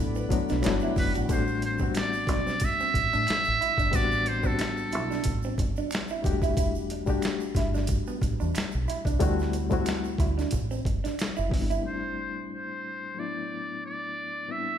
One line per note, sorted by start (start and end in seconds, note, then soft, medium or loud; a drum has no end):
0.00 0.24 A1 medium
0.00 0.24 F#3 medium
0.00 0.25 A3 medium
0.00 0.25 B3 medium
0.00 0.25 D4 medium
0.00 0.26 E4 medium
0.00 0.62 A4 medium
0.00 1.28 D5 medium
0.00 1.28 F#5 medium
0.00 1.26 B5 medium
0.15 0.27 B3 medium
0.15 shaker soft
0.29 0.61 F#3 medium
0.29 0.62 A3 medium
0.29 0.63 B3 medium
0.29 0.64 D4 medium
0.29 0.64 F#4 medium
0.29 muted fingered electric bass stroke soft
0.29 muted clean electric guitar stroke soft
0.29 kick medium
0.29 closed hi-hat medium
0.29 shaker soft
0.49 0.62 B1 medium
0.49 0.61 D4 medium
0.49 snare soft
0.49 closed hi-hat soft
0.49 shaker soft
0.62 0.79 G1 loud
0.62 1.23 F#3 medium
0.62 1.23 A3 medium
0.62 1.24 B3 medium
0.62 1.25 D4 medium
0.62 1.25 E4 medium
0.62 1.28 G5 medium
0.62 finger snap medium
0.62 closed hi-hat medium
0.62 shaker medium
0.66 snare loud
0.80 0.94 E4 medium
0.80 shaker soft
0.96 1.11 F#1 medium
0.96 1.13 B4 medium
0.96 muted clean electric guitar stroke soft
0.96 kick medium
0.96 open hi-hat soft
0.96 shaker soft
1.15 1.28 A1 medium
1.15 1.26 F#4 medium
1.15 closed hi-hat soft
1.15 shaker soft
1.28 2.28 A1 loud
1.28 1.75 G3 medium
1.28 1.75 A3 medium
1.28 1.44 A3 medium
1.28 1.76 C4 medium
1.28 1.76 D4 medium
1.28 1.76 F#4 medium
1.28 1.61 C5 medium
1.28 kick medium
1.28 closed hi-hat medium
1.28 shaker medium
1.47 shaker soft
1.62 1.79 C5 medium
1.62 muted clean electric guitar stroke soft
1.62 closed hi-hat medium
1.78 2.98 G3 medium
1.78 2.99 B3 medium
1.78 1.92 C4 medium
1.78 2.99 C4 medium
1.78 kick medium
1.78 shaker soft
1.82 3.00 D4 medium
1.82 3.00 F#4 medium
1.95 2.28 D5 medium
1.95 finger snap medium
1.95 muted clean electric guitar stroke soft
1.95 snare loud
1.95 closed hi-hat medium
1.95 shaker medium
2.13 shaker soft
2.27 2.68 B1 medium
2.27 2.43 D4 medium
2.27 kick medium
2.27 snare soft
2.27 closed hi-hat medium
2.27 shaker soft
2.32 2.66 D5 medium
2.47 2.58 C4 medium
2.47 snare soft
2.47 shaker soft
2.60 kick medium
2.60 closed hi-hat medium
2.60 shaker medium
2.65 3.97 E5 loud
2.80 2.91 C4 medium
2.80 shaker soft
2.94 3.09 A1 medium
2.94 muted clean electric guitar stroke soft
2.94 kick medium
2.94 closed hi-hat medium
2.94 shaker soft
3.13 3.25 A2 medium
3.13 3.24 D4 medium
3.13 shaker soft
3.27 finger snap medium
3.27 muted clean electric guitar stroke soft
3.27 muted fingered electric bass stroke soft
3.27 snare loud
3.27 closed hi-hat medium
3.27 shaker medium
3.44 shaker soft
3.48 3.59 A1 medium
3.61 3.75 E4 medium
3.61 closed hi-hat medium
3.61 shaker soft
3.78 3.90 G1 medium
3.78 3.90 D4 medium
3.78 kick medium
3.78 closed hi-hat soft
3.78 shaker soft
3.92 4.95 A1 medium
3.92 4.38 G3 medium
3.92 4.07 A3 medium
3.92 4.39 B3 medium
3.92 4.39 C4 medium
3.92 4.40 D4 medium
3.92 4.40 F#4 loud
3.92 4.30 D5 loud
3.92 kick medium
3.92 closed hi-hat medium
3.92 shaker medium
4.11 shaker soft
4.26 4.48 C5 medium
4.26 muted clean electric guitar stroke soft
4.26 closed hi-hat medium
4.43 5.62 G3 medium
4.43 5.62 B3 medium
4.43 4.56 C4 medium
4.43 5.63 C4 medium
4.43 5.63 D4 medium
4.43 5.63 F#4 medium
4.43 5.44 A4 medium
4.43 kick medium
4.43 shaker soft
4.59 finger snap medium
4.59 muted clean electric guitar stroke soft
4.59 snare loud
4.59 closed hi-hat medium
4.59 shaker medium
4.77 shaker soft
4.91 5.19 B1 medium
4.91 5.07 E4 medium
4.91 closed hi-hat medium
4.91 shaker soft
5.11 5.22 D4 medium
5.11 snare soft
5.11 shaker soft
5.24 5.52 A1 medium
5.24 kick medium
5.24 closed hi-hat medium
5.24 shaker medium
5.43 5.56 C4 medium
5.43 shaker soft
5.58 5.73 G1 medium
5.58 muted clean electric guitar stroke soft
5.58 kick medium
5.58 closed hi-hat medium
5.58 shaker soft
5.76 5.89 D4 medium
5.76 shaker soft
5.91 finger snap medium
5.91 snare loud
5.91 closed hi-hat medium
5.91 shaker medium
6.08 6.22 E4 medium
6.08 shaker soft
6.22 7.28 E1 loud
6.22 6.99 G3 medium
6.22 6.99 A3 medium
6.22 6.99 D4 medium
6.22 7.00 F#4 medium
6.22 7.00 G4 loud
6.22 muted clean electric guitar stroke soft
6.22 kick medium
6.22 closed hi-hat medium
6.22 shaker soft
6.42 6.54 E4 medium
6.42 kick medium
6.42 closed hi-hat soft
6.42 shaker soft
6.57 6.71 E4 medium
6.57 kick loud
6.57 closed hi-hat medium
6.57 shaker medium
6.75 shaker soft
6.90 muted clean electric guitar stroke soft
6.90 closed hi-hat medium
7.06 8.25 G3 medium
7.06 8.26 A3 medium
7.06 8.26 D4 medium
7.06 7.20 D4 medium
7.06 8.27 F#4 medium
7.06 8.27 G4 medium
7.06 kick medium
7.06 shaker soft
7.22 finger snap medium
7.22 muted clean electric guitar stroke soft
7.22 snare loud
7.22 closed hi-hat medium
7.22 shaker medium
7.40 shaker soft
7.55 7.96 G1 medium
7.55 7.70 E4 medium
7.55 kick medium
7.55 snare soft
7.55 closed hi-hat medium
7.55 shaker soft
7.74 7.86 D4 medium
7.74 snare soft
7.74 shaker soft
7.87 kick medium
7.87 closed hi-hat medium
7.87 shaker medium
8.07 8.19 B3 medium
8.07 shaker soft
8.22 8.36 A1 medium
8.22 muted clean electric guitar stroke soft
8.22 kick medium
8.22 closed hi-hat medium
8.22 shaker soft
8.40 8.53 E2 medium
8.40 8.51 D4 medium
8.40 shaker soft
8.55 finger snap medium
8.55 muted clean electric guitar stroke soft
8.55 muted fingered electric bass stroke soft
8.55 snare loud
8.55 closed hi-hat medium
8.55 shaker medium
8.71 8.86 B1 medium
8.71 shaker soft
8.88 9.02 E4 medium
8.88 closed hi-hat medium
8.88 shaker soft
9.05 9.18 C2 medium
9.05 9.17 D4 medium
9.05 kick medium
9.05 closed hi-hat soft
9.05 shaker medium
9.19 10.16 D2 medium
9.19 9.66 G3 loud
9.19 9.66 A3 loud
9.19 9.67 C4 loud
9.19 9.35 D4 medium
9.19 9.67 E4 loud
9.19 9.67 F#4 loud
9.19 kick loud
9.19 closed hi-hat medium
9.19 shaker medium
9.39 snare soft
9.39 shaker soft
9.53 muted clean electric guitar stroke soft
9.53 closed hi-hat medium
9.53 shaker soft
9.70 10.51 G3 medium
9.70 10.52 A3 medium
9.70 10.52 C4 medium
9.70 9.83 C4 medium
9.70 10.53 E4 medium
9.70 10.53 F#4 medium
9.70 kick medium
9.70 closed hi-hat soft
9.70 shaker soft
9.86 finger snap medium
9.86 muted clean electric guitar stroke soft
9.86 snare loud
9.86 closed hi-hat medium
9.86 shaker medium
10.04 shaker soft
10.18 10.45 D2 medium
10.18 10.33 E4 medium
10.18 kick medium
10.18 closed hi-hat medium
10.18 shaker soft
10.38 10.49 D4 medium
10.38 snare soft
10.38 closed hi-hat soft
10.38 shaker soft
10.51 10.79 A1 loud
10.51 kick medium
10.51 closed hi-hat medium
10.51 shaker medium
10.71 10.82 C4 medium
10.71 shaker soft
10.85 11.00 G1 medium
10.85 muted clean electric guitar stroke soft
10.85 kick medium
10.85 closed hi-hat medium
11.04 11.15 D4 medium
11.04 snare soft
11.04 closed hi-hat soft
11.04 shaker soft
11.19 finger snap medium
11.19 snare loud
11.19 closed hi-hat medium
11.19 shaker medium
11.36 11.50 F#1 medium
11.36 11.48 E4 medium
11.36 shaker soft
11.50 11.78 G1 medium
11.50 11.81 G3 medium
11.50 11.81 B3 medium
11.50 11.81 C4 medium
11.50 11.82 D4 medium
11.50 11.82 E4 medium
11.50 muted clean electric guitar stroke soft
11.50 kick medium
11.54 open hi-hat soft
11.70 11.81 E4 medium
11.70 closed hi-hat soft
11.70 shaker soft
11.81 13.12 A2 soft
11.81 13.13 G3 soft
11.81 13.14 A3 soft
11.86 13.14 C4 soft
11.86 13.15 D4 soft
11.86 11.93 D#4 soft
11.86 12.48 C5 medium
11.95 13.18 E4 medium
12.53 13.21 C5 medium
13.13 14.44 A2 medium
13.13 14.45 F#3 soft
13.13 14.45 A3 soft
13.13 14.46 B3 soft
13.18 14.47 D4 soft
13.18 14.47 E4 medium
13.18 13.84 D5 medium
13.86 14.53 D5 medium
14.47 14.78 A2 medium
14.47 14.78 G3 soft
14.47 14.78 B3 medium
14.47 14.78 C4 soft
14.47 14.78 D4 soft
14.47 14.78 E4 medium
14.52 14.78 E5 medium